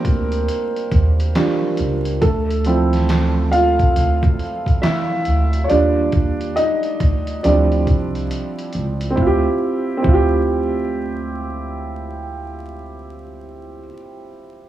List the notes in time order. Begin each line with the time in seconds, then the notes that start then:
Already playing: G3 A#3 C4 D4 F4 A#4 C5
0.05 D2, kick, closed hi-hat
0.32 closed hi-hat
0.48 closed hi-hat
0.76 closed hi-hat
0.91 D#2, kick, closed hi-hat
1.20 closed hi-hat
1.35 G3 D4 F4, snare, clap, closed hi-hat
1.77 C#2, closed hi-hat
2.05 closed hi-hat
2.21 D2 A3 A4, kick, closed hi-hat
2.50 closed hi-hat
2.65 F3 C4 E4, closed hi-hat
2.93 snare, closed hi-hat
3.09 snare, clap, closed hi-hat
3.52 F4 F5, closed hi-hat
3.79 C2, kick, closed hi-hat
3.96 D2, closed hi-hat
4.23 kick, closed hi-hat
4.40 closed hi-hat
4.66 kick, closed hi-hat
4.82 E4 E5, snare, clap, closed hi-hat
5.25 D2, closed hi-hat
5.53 closed hi-hat
5.64 C#5
5.69 D#2 G3 D4 F4 D5, closed hi-hat
6.12 D#2, kick, closed hi-hat
6.41 closed hi-hat
6.56 D#4 D#5, closed hi-hat
6.83 closed hi-hat
7.00 D2, kick, closed hi-hat
7.27 closed hi-hat
7.43 D2 F3 G3 C4 D4 E4 D5, closed hi-hat
7.72 closed hi-hat
7.87 C2, kick, closed hi-hat
8.15 closed hi-hat
8.31 closed hi-hat
8.59 closed hi-hat
8.73 C#2, closed hi-hat
9.01 closed hi-hat
9.10 C4
9.16 D2 E4, kick
9.21 F4
9.26 G4
9.97 C4
10.02 D2 E4, kick
10.08 F4
10.13 G4